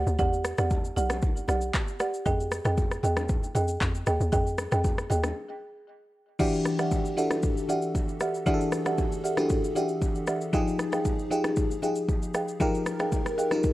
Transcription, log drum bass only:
0.07 0.17 D2 loud
0.19 0.53 E2 loud
0.59 0.92 E2 loud
0.97 1.42 B1 loud
1.48 1.71 B1 loud
2.26 2.60 F2 loud
2.65 2.99 F2 loud
3.03 3.49 E2 loud
3.55 3.78 F2 loud
3.81 4.04 F2 medium
4.07 4.19 D#2 medium
4.20 4.31 D#2 medium
4.33 4.67 F2 loud
4.72 5.06 F2 loud
5.11 5.33 D#2 loud

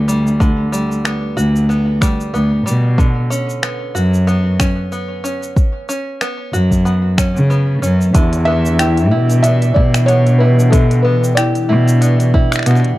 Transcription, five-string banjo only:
0.00 0.39 D3 medium
0.00 1.04 B3 medium
0.00 1.36 F#4 medium
0.08 0.71 G3 medium
0.40 2.97 D3 medium
0.72 2.00 G3 medium
1.05 1.69 B3 medium
1.37 3.06 F#4 medium
1.69 2.33 B3 medium
2.01 2.65 G3 medium
2.34 3.33 B3 medium
2.66 3.06 G3 medium
2.98 5.56 D3 medium
3.30 4.58 C#4 medium
3.63 4.27 B3 medium
3.95 6.52 F#4 medium
4.27 4.92 B3 medium
4.60 5.23 C#4 medium
4.92 6.21 B3 medium
5.24 5.88 C#4 medium
5.89 7.16 C#4 medium
6.21 6.85 B3 medium
6.53 8.22 F#4 medium
6.85 7.50 B3 medium
7.18 7.81 C#4 medium
7.50 8.47 B3 medium
7.82 8.22 C#4 medium
8.15 10.71 D3 medium
8.47 9.42 B3 medium
8.79 11.36 G4 medium
9.11 9.74 E4 medium
9.44 10.07 B3 medium
9.76 10.39 E4 medium
10.08 11.03 B3 medium
10.40 11.68 E4 medium
10.72 12.98 D3 medium
11.05 12.00 B3 medium
11.37 12.98 G4 medium
11.69 12.33 E4 medium
12.01 12.65 B3 medium
12.34 12.98 E4 medium
12.66 12.98 B3 medium

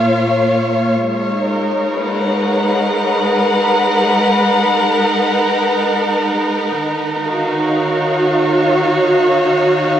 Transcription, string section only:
0.00 1.03 A#2 medium
0.00 1.03 A#3 medium
0.00 1.04 F4 medium
0.00 3.32 C#5 medium
0.00 1.04 F5 medium
1.01 6.74 G#3 medium
1.32 10.00 D#4 medium
1.39 9.04 A#4 medium
1.90 6.77 B4 medium
2.05 6.76 F#5 medium
6.76 10.00 D#3 medium
7.25 10.00 F#4 medium
7.25 10.00 F5 medium
7.48 10.00 C#5 medium

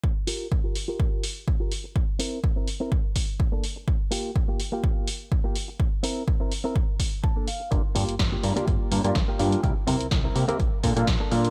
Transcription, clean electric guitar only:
0.27 0.46 F4 medium
0.27 0.46 G4 medium
0.27 0.46 A#4 loud
0.64 0.75 F4 medium
0.64 0.76 G4 medium
0.64 0.76 A#4 medium
0.88 1.23 F4 loud
0.88 1.24 G4 medium
0.88 1.24 A#4 loud
1.60 1.71 F4 medium
1.60 1.72 G4 medium
1.60 1.72 A#4 medium
1.84 muted clean electric guitar stroke soft
2.19 2.38 C4 loud
2.19 2.38 E4 medium
2.19 2.38 A#4 loud
2.56 2.67 C4 medium
2.56 2.68 E4 medium
2.56 2.68 A#4 medium
2.80 2.91 C4 loud
2.80 2.92 E4 loud
2.80 2.92 A#4 loud
3.52 3.63 A#3 medium
3.52 3.64 D4 medium
3.52 3.64 A4 medium
3.76 muted clean electric guitar stroke soft
4.11 4.30 A#3 loud
4.11 4.30 F4 medium
4.11 4.30 G4 loud
4.48 4.59 A#3 medium
4.48 4.60 F4 medium
4.48 4.60 G4 medium
4.72 5.07 A#3 loud
4.72 5.08 F4 loud
4.72 5.08 G4 loud
5.44 5.55 A#3 medium
5.44 5.56 F4 medium
5.44 5.56 G4 medium
5.68 muted clean electric guitar stroke soft
6.03 6.22 C4 loud
6.03 6.22 E4 medium
6.03 6.22 A#4 loud
6.40 6.51 C4 medium
6.40 6.52 E4 medium
6.40 6.52 A#4 medium
6.64 6.75 C4 loud
6.64 6.76 E4 medium
6.64 6.76 A#4 loud
7.24 7.46 A5 medium
7.36 7.47 A#3 medium
7.36 7.48 D4 medium
7.36 7.48 A4 medium
7.48 7.70 F5 medium
7.60 muted clean electric guitar stroke soft
7.95 8.14 A#3 loud
7.95 8.14 F4 medium
7.95 8.14 G4 loud
8.32 8.43 A#3 medium
8.32 8.44 F4 medium
8.32 8.44 G4 medium
8.56 8.91 A#3 loud
8.56 8.92 F4 loud
8.56 8.92 G4 loud
9.28 9.39 A#3 medium
9.28 9.40 F4 medium
9.28 9.40 G4 medium
9.52 muted clean electric guitar stroke soft
9.87 10.06 C4 loud
9.87 10.06 E4 medium
9.87 10.06 A#4 loud
10.24 10.35 C4 medium
10.24 10.36 E4 medium
10.24 10.36 A#4 medium
10.48 10.59 C4 loud
10.48 10.60 E4 loud
10.48 10.60 A#4 loud
11.20 11.31 A#3 medium
11.20 11.32 D4 medium
11.20 11.32 A4 medium
11.44 muted clean electric guitar stroke soft

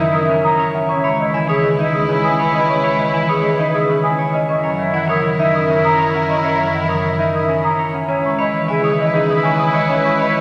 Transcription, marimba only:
0.14 0.34 C#4 medium
0.29 0.49 D#3 medium
0.89 1.09 C#4 medium
1.05 1.24 G#3 medium
1.19 1.39 D#3 medium
1.34 1.54 E3 medium
1.49 1.69 C#3 medium
1.64 1.84 D#3 medium
1.94 2.14 C#4 medium
2.09 2.29 D#3 medium
2.68 2.89 C#4 medium
2.83 3.04 G#3 medium
2.99 3.19 D#3 medium
3.13 3.34 E3 medium
3.29 3.49 C#3 medium
3.44 3.64 D#3 medium
3.74 3.94 C#4 medium
3.90 4.09 D#3 medium
4.49 4.69 C#4 medium
4.64 4.84 F#3 medium
4.79 4.99 D#3 medium
4.94 5.14 E3 medium
5.09 5.29 C#3 medium
5.24 5.44 D#3 medium
5.54 5.74 C#4 medium
5.69 5.89 D#3 medium
6.29 6.49 C#4 medium
6.45 6.64 F#3 medium
6.60 6.79 D#3 medium
6.74 6.94 E3 medium
6.89 7.09 C#3 medium
7.04 7.24 D#3 medium
7.34 7.54 C#4 medium
7.49 7.69 D#3 medium
8.09 8.29 C#4 medium
8.24 8.44 G#3 medium
8.39 8.59 D#3 medium
8.54 8.74 E3 medium
8.69 8.89 C#3 medium
8.84 9.04 D#3 medium
8.99 9.19 E3 medium
9.14 9.34 C#4 medium
9.29 9.49 D#3 medium
9.59 9.79 E3 medium
9.89 10.09 C#4 loud
10.04 10.24 G#3 medium
10.20 10.39 D#3 medium
10.34 10.41 E3 loud

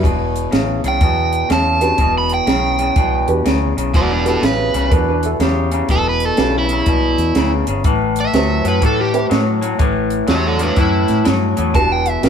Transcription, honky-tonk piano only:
1.80 1.97 D4 medium
1.80 1.96 F#4 medium
1.80 1.97 G4 medium
1.80 1.97 B4 medium
3.28 3.43 D4 medium
3.28 3.44 F#4 medium
3.28 3.44 G4 medium
3.28 3.44 B4 medium
4.25 4.88 D4 medium
4.25 4.88 F#4 medium
4.25 4.88 G4 medium
4.25 4.88 B4 medium
6.38 6.66 D4 medium
6.38 6.67 F#4 soft
6.38 6.67 G4 medium
6.38 6.67 B4 medium
8.34 8.62 C4 medium
8.34 8.62 E4 soft
8.34 8.62 G4 medium
8.34 8.62 B4 medium
9.13 9.29 C4 medium
9.13 9.29 E4 medium
9.13 9.29 G4 medium
9.13 9.30 B4 medium
11.75 12.03 D4 medium
11.75 12.03 F#4 medium
11.75 12.03 G4 medium
11.75 12.03 B4 medium
12.22 12.29 D4 medium
12.22 12.29 F#4 medium
12.22 12.29 G4 medium
12.22 12.29 B4 medium

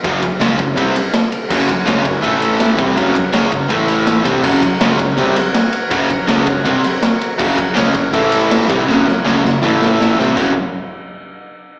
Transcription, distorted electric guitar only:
0.03 0.21 F#2 loud
0.03 0.22 C#3 medium
0.03 0.22 F#3 loud
0.23 muted distorted electric guitar stroke medium
0.39 0.57 C#3 loud
0.39 0.58 G#3 medium
0.39 0.58 C#4 medium
0.58 0.73 F#2 medium
0.58 0.73 C#3 medium
0.76 0.94 C3 loud
0.76 0.94 G3 loud
0.76 0.94 C4 loud
1.50 1.67 F#2 loud
1.50 1.68 C#3 loud
1.50 1.68 F#3 loud
1.68 muted distorted electric guitar stroke medium
1.85 2.02 C#3 medium
1.85 2.04 G#3 loud
1.85 2.04 C#4 loud
2.04 2.19 F#2 medium
2.04 2.19 C#3 medium
2.21 2.76 A2 medium
2.21 2.77 E3 loud
2.21 2.77 A3 loud
2.78 2.96 C3 medium
2.78 2.96 G3 loud
2.78 2.97 C4 loud
2.96 3.14 F#2 loud
2.96 3.15 C#3 medium
2.96 3.15 F#3 loud
3.15 muted distorted electric guitar stroke medium
3.33 3.50 C#3 loud
3.33 3.51 G#3 loud
3.33 3.51 C#4 loud
3.51 3.66 F#2 medium
3.51 3.66 C#3 medium
3.68 4.24 A2 medium
3.68 4.24 E3 medium
3.68 4.24 A3 loud
4.24 4.42 C3 loud
4.24 4.43 G3 loud
4.24 4.43 C4 loud
4.43 4.60 F#2 medium
4.43 4.61 C#3 loud
4.43 4.61 F#3 loud
4.62 muted distorted electric guitar stroke medium
4.80 4.97 C#3 medium
4.80 4.98 G#3 medium
4.80 4.99 C#4 loud
4.98 5.13 F#2 medium
4.98 5.13 C#3 medium
5.17 5.35 C3 medium
5.17 5.35 G3 medium
5.17 5.36 C4 loud
5.90 6.09 F#2 medium
5.90 6.09 C#3 loud
5.90 6.09 F#3 loud
6.10 muted distorted electric guitar stroke medium
6.27 6.45 C#3 medium
6.27 6.46 G#3 loud
6.27 6.46 C#4 loud
6.46 6.61 F#2 medium
6.46 6.61 C#3 medium
6.65 6.83 C3 loud
6.65 6.83 G3 medium
6.65 6.83 C4 loud
7.38 7.55 F#2 loud
7.38 7.57 C#3 loud
7.38 7.57 F#3 loud
7.56 muted distorted electric guitar stroke medium
7.73 7.93 C#3 loud
7.73 7.93 G#3 loud
7.73 7.93 C#4 loud
7.94 8.09 F#2 medium
7.94 8.09 C#3 medium
8.13 8.68 A2 loud
8.13 8.68 E3 medium
8.13 8.68 A3 loud
8.69 8.87 C3 loud
8.69 8.87 G3 loud
8.69 8.87 C4 loud
8.86 9.05 F#2 medium
8.86 9.05 C#3 medium
8.86 9.05 F#3 loud
9.07 muted distorted electric guitar stroke medium
9.24 9.42 C#3 loud
9.24 9.43 G#3 loud
9.24 9.43 C#4 loud
9.44 9.58 F#2 medium
9.44 9.58 C#3 medium
9.62 10.16 A2 loud
9.62 10.17 E3 medium
9.62 10.17 A3 medium
10.18 10.35 C3 medium
10.18 10.36 G3 loud
10.18 10.36 C4 medium
10.36 10.50 F#2 loud
10.36 10.51 C#3 loud
10.36 10.51 F#3 loud

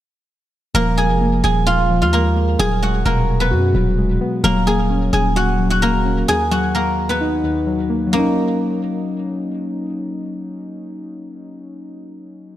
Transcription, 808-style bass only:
0.75 1.11 D#1 loud
1.09 1.42 F1 loud
1.44 2.03 D#1 loud
2.02 2.56 D#2 medium
2.59 3.04 D#1 loud
3.05 3.53 D#1 loud
3.52 3.73 F#2 loud
3.75 4.19 D#1 loud
4.44 5.10 D#1 loud
5.13 6.24 D#1 loud

